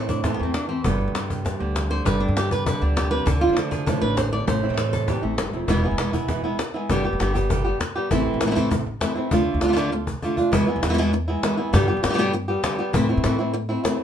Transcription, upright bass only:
Already playing: A2
0.40 E2
0.85 G1
1.08 G2
1.60 D2
2.05 G1
2.28 G2
2.81 D2
3.26 D2
3.49 D3
4.02 A1
4.47 A1
4.70 A2
5.23 A1
5.38 G1
5.53 E1
5.68 E1
5.91 E1
5.99 E1
6.89 G1
7.13 G1
7.20 G1
8.11 A1
8.34 A1
8.42 A1
9.32 D2
9.54 D2
9.62 D2
10.53 E2
10.76 E2
10.83 E2
11.74 G2
11.97 G2
12.04 G2
12.94 A2
13.17 A2
13.25 A2

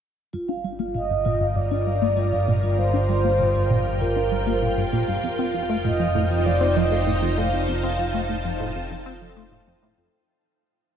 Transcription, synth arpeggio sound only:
0.33 G2
0.49 D4
0.64 G3
0.80 A#3
0.95 A#2
1.10 G2
1.26 A#2
1.41 G2
1.56 G2
1.71 D4
1.87 G3
2.02 A#3
2.17 A#2
2.32 G2
2.48 A#2
2.63 G2
2.78 G2
2.94 D4
3.09 G3
3.25 A#3
3.40 A#2
3.55 G2
3.70 A#2
3.86 G2
4.01 G2
4.16 D4
4.32 G3
4.47 A#3
4.62 A#2
4.78 G2
4.93 A#2
5.08 G2
5.24 F2
5.39 C4
5.54 F3
5.69 A3
5.85 A2
6.00 F2
6.15 A2
6.31 F2
6.46 F2
6.61 C4
6.76 F3
6.92 A3
7.07 A2
7.22 F2
7.38 A2
7.53 F2
7.68 F2
7.84 C4
7.99 F3
8.14 A3
8.29 A2
8.45 F2
8.60 A2
8.76 F2
8.91 F2
9.06 C4
9.22 F3
9.37 A3
9.52 A2
9.67 F2
9.83 A2
9.98 F2

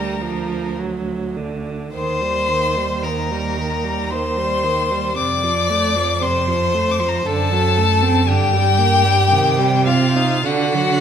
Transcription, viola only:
Already playing: G3
0.21 F3
0.78 F#3
1.36 D3
1.94 D#3
2.21 G3
2.49 D#3
2.76 G3
3.03 D#3
3.31 G3
3.58 D#3
3.84 G3
4.11 D#3
4.37 G3
4.64 D#3
4.90 G3
5.16 C3
5.43 F3
5.69 A3
5.95 F3
6.22 C3
6.47 F3
6.74 A3
7.00 F3
7.26 D3
7.52 F#3
7.77 A3
8.02 C4
8.27 D3
8.53 G3
8.78 A#3
9.04 G3
9.31 D#3
9.58 G3
9.86 C4
10.16 D#4
10.45 D3
10.75 F#3

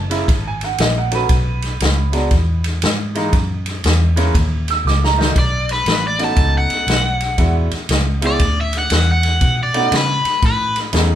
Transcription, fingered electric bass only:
Already playing: F#1
0.28 G#1
0.79 A#1
1.30 B1
1.81 C#2
2.31 E2
2.83 G#2
3.33 F#2
3.85 E2
4.35 D#2
4.85 C#2
5.36 B1
5.86 A1
6.37 C#2
6.87 B1
7.38 E2
7.72 muted fingered electric bass stroke
7.89 C#2
8.40 D2
8.91 E2
9.41 B2
9.92 C#3
10.25 muted fingered electric bass stroke
10.43 A2
10.93 E2

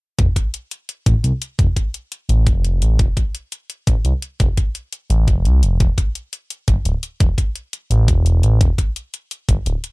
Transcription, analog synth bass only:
0.19 F1
1.06 A1
1.24 C2
1.59 F1
2.29 A1
2.47 F1
2.82 A1
2.99 F1
3.87 A1
4.05 C2
4.40 F1
5.10 A1
5.28 F1
5.45 C2
5.62 F1
5.80 E1
6.68 G1
6.85 D1
7.20 E1
7.90 A1
8.08 E1
8.43 A1
8.61 E1
9.49 G1
9.66 D1

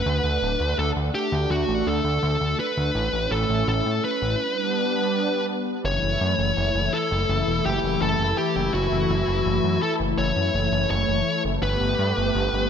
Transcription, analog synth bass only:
0.06 D2
0.24 D2
0.42 D1
0.60 D2
0.78 D2
0.96 D2
1.32 D2
1.50 D2
1.68 A1
1.87 D2
2.04 D2
2.23 D2
2.41 D2
2.77 D2
2.95 A1
3.13 A1
3.31 A1
3.49 A1
3.68 A1
3.86 A2
4.22 A1
5.84 F#1
6.03 F#1
6.21 F#2
6.39 F#1
6.57 F#1
6.75 F#1
7.11 F#1
7.29 F#1
7.48 E1
7.65 F#1
7.84 F#1
8.01 F#1
8.19 F#1
8.56 F#1
8.74 F#1
8.92 F#1
9.10 F#1
9.28 F#1
9.46 F#1
9.64 F#2
10.00 F#1
10.18 F#1
10.36 F#2
10.54 F#1
10.72 F#1
10.90 F#1
11.08 F#1
11.45 F#1
11.62 G1
11.81 G1
11.99 G2
12.17 G1
12.35 G1
12.53 G1

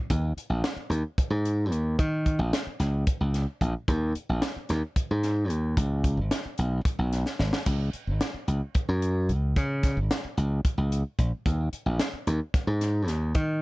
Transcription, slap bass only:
0.10 D#2
0.37 muted slap bass stroke
0.50 A#1
0.76 muted slap bass stroke
0.90 D#2
1.18 muted slap bass stroke
1.30 G#2
1.72 D#2
1.99 D#3
2.39 A#1
2.67 muted slap bass stroke
2.80 C#2
3.21 C#2
3.61 A#1
3.88 D#2
4.15 muted slap bass stroke
4.29 A#1
4.56 muted slap bass stroke
4.70 D#2
4.97 muted slap bass stroke
5.11 G#2
5.50 D#2
5.77 C#2
6.17 G#1
6.45 muted slap bass stroke
6.59 B1
6.99 B1
7.39 G#1
7.66 C#2
7.94 muted slap bass stroke
8.07 G#1
8.34 muted slap bass stroke
8.48 C#2
8.75 muted slap bass stroke
8.88 F#2
9.29 C#2
9.56 C#3
9.97 G#1
10.25 muted slap bass stroke
10.37 C#2
10.78 C#2
11.19 A#1
11.46 D#2
11.73 muted slap bass stroke
11.86 A#1
12.13 muted slap bass stroke
12.27 D#2
12.54 muted slap bass stroke
12.67 G#2
13.08 D#2
13.35 D#3

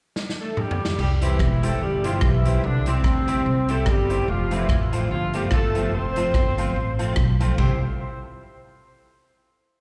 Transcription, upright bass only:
0.98 C2
1.39 E1
1.81 G1
2.22 B1
2.64 C2
3.04 D2
3.46 C2
3.87 G1
4.28 F1
4.69 A1
5.11 G1
5.52 G1
5.94 F1
6.34 G1
6.76 A1
7.17 B1
7.58 C2

